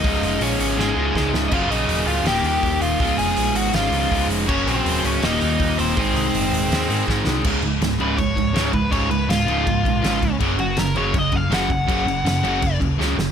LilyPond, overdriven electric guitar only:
\new Staff \with { instrumentName = "Overdriven electric guitar" } { \time 4/4 \key des \major \tempo 4 = 162 <ees' ees''>4 <des' des''>8 <des' des''>8 <aes aes'>4. r16. ees''32 | <f' f''>8 <ees' ees''>4 <f' f''>8 <g' g''>8 <g' g''>4 <f' f''>8~ | <f' f''>8 <aes' aes''>4 <ges' ges''>8 <f' f''>4. r8 | <des' des''>8 <c' c''>4 <des' des''>8 <ees' ees''>4. <c' c''>8~ |
<c' c''>2. r4 | r4. ces''8 des''4. ces''8 | des''8 ces''8 f'2. | r8 ges'8 bes'8 des''8 ees''8 f''8 ges''8 ges''8~ |
ges''2~ ges''8 r4. | }